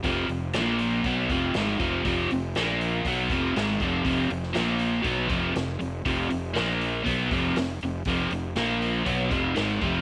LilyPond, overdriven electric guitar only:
\new Staff \with { instrumentName = "Overdriven electric guitar" } { \clef bass \time 4/4 \key f \minor \tempo 4 = 120 <f, c f>8 <f, c>8 <bes, f bes>4 <b, ges b>8 <f, c f>8 <aes, ees aes>8 <f, c f>8 | <f, c f>8 <f, c>8 <bes, f bes>4 <b, ges b>8 <f, c f>8 <aes, ees aes>8 <f, c f>8 | <f, c f>8 <f, c>8 <bes, f bes>4 <b, ges b>8 <f, c f>8 <f, c>8 <f, c>8 | <f, c f>8 <f, c>8 <bes, f bes>4 <b, ges b>8 <f, c f>8 <f, c>8 <f, c>8 |
<f, c f>8 <f, c>8 <bes, f bes>4 <b, ges b>8 <f, c f>8 <aes, ees aes>8 <f, c f>8 | }